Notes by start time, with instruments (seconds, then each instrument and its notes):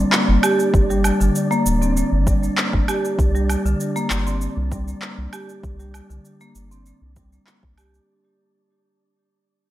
Already playing: synth texture D4 D5
0.12 marimba A#3, clap, cabasa
0.28 analog synth bass G1
0.43 marimba G4, cabasa, low woodblock
0.60 cabasa
0.74 analog synth bass G1, kick, cabasa
0.90 marimba G3, cabasa
1.04 cabasa, low woodblock
1.21 analog synth bass G1, marimba D3, cabasa
1.35 cabasa
1.51 marimba A#3, cabasa
1.66 analog synth bass D1, cabasa
1.82 marimba C4, cabasa
1.97 cabasa
2.12 analog synth bass G1
2.27 marimba G3, kick, cabasa
2.43 cabasa
2.58 marimba A#3, clap, cabasa
2.73 analog synth bass G1, kick
2.88 marimba G4, cabasa, low woodblock
3.05 cabasa
3.19 analog synth bass C2, kick, cabasa
3.35 marimba G3, cabasa
3.49 cabasa, low woodblock
3.65 analog synth bass C2, marimba D3, cabasa
3.80 cabasa
3.96 marimba A#3, cabasa
4.10 analog synth bass G1, clap, cabasa
4.27 marimba C4, cabasa
4.41 cabasa
4.57 analog synth bass C2
4.72 marimba G3, kick, cabasa
4.88 cabasa
5.02 marimba A#3, clap, cabasa
5.18 analog synth bass C2
5.33 marimba G4, cabasa, low woodblock
5.49 cabasa
5.63 analog synth bass C2, kick, cabasa
5.80 marimba G3, cabasa
5.94 cabasa, low woodblock
6.10 analog synth bass C2, marimba D3, cabasa
6.25 cabasa
6.41 marimba A#3, cabasa
6.55 analog synth bass G1, cabasa
6.71 marimba C4, cabasa
6.86 cabasa
7.02 analog synth bass C2
7.16 marimba G3, kick, cabasa
7.33 cabasa
7.47 marimba A#3, clap, cabasa
7.63 analog synth bass C2, kick
7.78 marimba G4, cabasa, low woodblock
7.94 cabasa